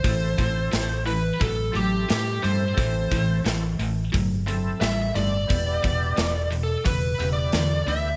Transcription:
<<
  \new Staff \with { instrumentName = "Lead electric guitar" } { \time 4/4 \key a \dorian \tempo 4 = 88 c''4. b'8 a'8 g'8 g'8 c''8~ | c''4 r2 e''8 d''8~ | d''4~ \tuplet 3/2 { d''8. r16 a'8 b'4 d''8~ } d''8 e''8 | }
  \new Staff \with { instrumentName = "Tonewheel organ" } { \time 4/4 \key a \dorian <c' e' a'>4. r4 <c' e' a'>8 r8 <c' e' a'>8 | <c' e' a'>4. r4 <c' e' a'>8 r8 <c' e' a'>8 | <b e' g'>4. r4 <b e' g'>8 r8 <b e' g'>8 | }
  \new Staff \with { instrumentName = "Distorted electric guitar" } { \clef bass \time 4/4 \key a \dorian <a, e>8 <a, e>8 <a, e>8 <a, e>8 <a, fis>8 <a, fis>8 <a, g>8 <a, g>8 | <a, e>8 <a, e>8 <a, e>8 <a, e>8 <a, fis>8 <a, fis>8 <a, g>8 <a, g>8 | <e, b,>8 <e, b,>8 <e, b,>8 <e, b,>8 <e, cis>8 <e, cis>8 <e, d>8 <e, d>8 | }
  \new Staff \with { instrumentName = "Fingered electric bass" } { \clef bass \time 4/4 \key a \dorian a,,8 a,,8 a,,4 a,,8 a,,8 a,8 g,8 | a,,8 a,,8 a,,8 a,,8 g,,4 a,,8 g,,8 | e,,8 e,,8 e,,4 e,,8 e,,8 e,8 d,8 | }
  \new DrumStaff \with { instrumentName = "Drums" } \drummode { \time 4/4 <hho bd>8 <hho bd>8 <hho sn>8 hho8 <hho bd>8 hho8 <hho sn>8 hho8 | <hho bd>8 <hho bd>8 <hho sn>8 hho8 <hho bd>8 hho8 <hho sn>8 hho8 | <hho bd>8 <hho bd>8 <hho sn>8 hho8 <hho bd>8 hho8 <hho sn>8 hho8 | }
>>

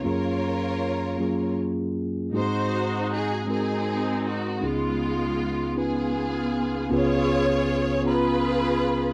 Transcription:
<<
  \new Staff \with { instrumentName = "String section" } { \time 6/8 \key cis \mixolydian \tempo 4. = 52 << { cis''2 r4 | bis'4 gis'8 gis'4 fis'8 | eis'4. gis'4. | cis''4. b'4. | } \\ { <eis' ais'>2 r4 | <dis' fis'>4. <bis dis'>4. | <gis b>4. <b eis'>4. | <eis' gis'>4. <eis' gis'>4. | } >> }
  \new Staff \with { instrumentName = "Tine electric piano" } { \time 6/8 \key cis \mixolydian <fis ais cis' eis' gis'>4 r8 <fis ais cis' eis' gis'>4 r8 | <gis ais bis dis' fis' gis'>4 r8 <gis bis dis' fis' ais'>4 r8 | <b cis' dis' eis' gis'>4 r8 <b cis' dis' eis' b'>4 r8 | <b cis' eis' gis' b'>4 r8 <b cis' eis' gis' ais''>4 r8 | }
  \new Staff \with { instrumentName = "Tine electric piano" } { \clef bass \time 6/8 \key cis \mixolydian fis,2. | gis,2. | <cis, cis>2. | <cis, cis>2. | }
>>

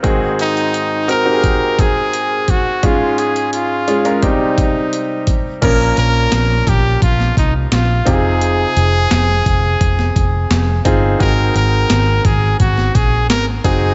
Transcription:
<<
  \new Staff \with { instrumentName = "Trumpet" } { \time 4/4 \key aes \major \tempo 4 = 86 r8 ees'4 bes'4 aes'4 ges'8 | f'8 aes'8 f'4 ees'4. r8 | bes'8 bes'4 g'8 f'8 ees'8 f'8 aes'8~ | aes'2.~ aes'8 r8 |
bes'8 bes'4 aes'8 ges'8 aes'8 bes'8 aes'8 | }
  \new Staff \with { instrumentName = "Grand piano" } { \time 4/4 \key aes \major <c' ees' ges' aes'>4~ <c' ees' ges' aes'>16 r16 <c' ees' ges' bes'>16 <c' ees' ges' g' aes'>4. r8. | <aes des' f' aes'>4~ <aes des' f' aes'>16 r16 <aes des' f' aes'>16 <aes des' f' bes'>16 <g c' ees' g'>4. r8 | <bes des' f' bes'>4. r2 <c' ees' f' g' aes'>8~ | <c' ees' f' g' aes'>4 r2 r8 <c' ees' f' aes'>8 |
<c' ees' ges' aes'>4. r2 <c' ees' ges' aes'>8 | }
  \new Staff \with { instrumentName = "Grand piano" } { \clef bass \time 4/4 \key aes \major <aes, ees>1 | aes,2 c2 | <bes, f>4. r2 c8~ | c4 r2. |
<aes, ees>4. r2 r8 | }
  \new Staff \with { instrumentName = "Picked electric bass" } { \clef bass \time 4/4 \key aes \major r1 | r1 | bes,,8 bes,,8 bes,,8 bes,,8 bes,,8 c,8 bes,,8 f,,8~ | f,,8 f,,8 f,,8 f,,8 f,,8 f,,8 f,,8 g,,8 |
aes,,8 aes,,8 aes,,8 aes,,8 aes,,8 bes,,8 aes,,8 ges,,8 | }
  \new DrumStaff \with { instrumentName = "Drums" } \drummode { \time 4/4 <hh bd>8 hh16 hh16 hh8 hh8 <hh bd>8 <hh bd>8 hh8 <hh bd>8 | <hh bd>8 hh16 hh16 hh8 hh16 hh16 <hh bd>8 <hh bd>8 hh8 <hh bd>8 | <cymc hh bd>8 hh8 <hc hh sn>8 <hh bd>8 <hh bd>16 sn16 <hh bd>8 <hc hh sn>8 <hh bd>8 | hh8 hh8 <hc hh sn>8 <hh bd>8 <hh bd>16 sn16 <hh bd>8 <hc hh sn>8 <hh bd>8 |
<hh bd>8 hh8 <hc hh sn>8 <hh bd>8 <hh bd>16 sn16 <hh bd>8 <hc hh sn>8 <hh bd>8 | }
>>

